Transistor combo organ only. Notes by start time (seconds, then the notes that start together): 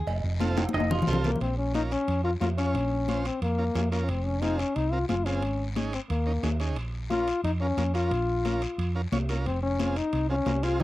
0.40 C4 F4 A4
1.07 C4 F4 A4
1.74 C#4 F4 A#4
2.24 C#4 F4 A#4
2.41 C#4 F4 A#4
2.58 C#4 F4 C#5
3.08 C#4 F4 C5
3.58 C#4 F4 A#4
3.75 C#4 F4 G#4
3.92 C#4 F4 A#4
4.42 C4 F4 G#4
4.92 C4 F4 A#4
5.09 C4 F4 G#4
5.26 C4 F4 G#4
5.76 C#4 D#4 G#4
6.26 C#4 D#4 A#4
6.43 C#4 D#4 G#4
6.60 C#4 D#4 G#4
7.11 C#4 F4 A#4
7.61 C#4 F4 A#4
7.77 C#4 F4 A#4
7.94 C#4 F4 A#4
8.45 C#4 F4 A#4
8.95 C#4 F4 A#4
9.12 C#4 F4 C#5
9.29 C#4 F4 A#4
9.79 C4 F4 G#4
10.29 C4 F4 G#4
10.46 C4 F4 A#4
10.63 C4 F4 G#4
10.80 C#4 D#4 G#4